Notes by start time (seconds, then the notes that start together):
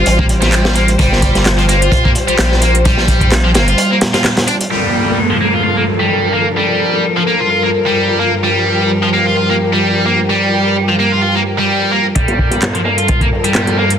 Already playing: G3 F4 G4 C5
0.06 A1 F4, closed hi-hat
0.19 A#3, kick
0.29 closed hi-hat
0.42 G3, snare, closed hi-hat
0.52 clap, closed hi-hat
0.65 snare
0.76 A#3, closed hi-hat
0.88 closed hi-hat
0.99 G1 G3, kick, closed hi-hat
1.13 snare
1.22 kick, closed hi-hat
1.35 snare, closed hi-hat
1.45 snare, clap, closed hi-hat
1.58 F3, closed hi-hat
1.69 A#3, closed hi-hat
1.82 F4, closed hi-hat
1.92 F4, kick, closed hi-hat
2.05 A#3, kick
2.15 closed hi-hat
2.28 A#1 G3, closed hi-hat
2.39 A#1, snare, clap, closed hi-hat
2.52 snare
2.62 A#3, closed hi-hat
2.75 closed hi-hat
2.85 G3, kick, closed hi-hat
2.97 snare
3.08 kick, closed hi-hat
3.21 kick, closed hi-hat
3.31 snare, clap, closed hi-hat
3.44 F3
3.54 G1 A#3, snare, closed hi-hat
3.67 F4, closed hi-hat
3.78 F4, closed hi-hat
3.91 A#3
4.01 snare, closed hi-hat
4.14 F4, snare, closed hi-hat
4.24 snare, clap, closed hi-hat
4.37 snare, closed hi-hat
4.48 D4, closed hi-hat
4.61 closed hi-hat
4.71 G2 F3 G3 A4 A#4, downlifter
5.30 F3
5.41 A#3
5.54 F4
5.64 F4
5.77 A#3
6.00 G3
6.34 A#3
6.57 G3
7.16 F3
7.27 A#3
7.40 F4
7.51 F4
7.63 A#3
7.86 G3
8.20 A#3
8.43 G3 G4
9.03 F3
9.13 A#3
9.26 F4
9.37 F4
9.49 A#3
9.73 G3
10.06 A#3
10.30 G3
10.89 F3
10.99 A#3
11.12 F4
11.22 F4
11.35 A#3
11.59 G3
11.92 A#3
12.15 G2 F3 G3 A4 A#4, kick, closed hi-hat, riser
12.28 snare, closed hi-hat
12.39 kick, closed hi-hat
12.51 snare, closed hi-hat
12.62 snare, clap, closed hi-hat
12.75 F3, closed hi-hat
12.85 A#3, closed hi-hat
12.98 F4, closed hi-hat
13.08 F4, kick, closed hi-hat
13.21 A#3, kick, closed hi-hat
13.33 closed hi-hat
13.44 G3, closed hi-hat
13.55 snare, clap, closed hi-hat
13.67 snare, closed hi-hat
13.78 A#3, closed hi-hat
13.90 closed hi-hat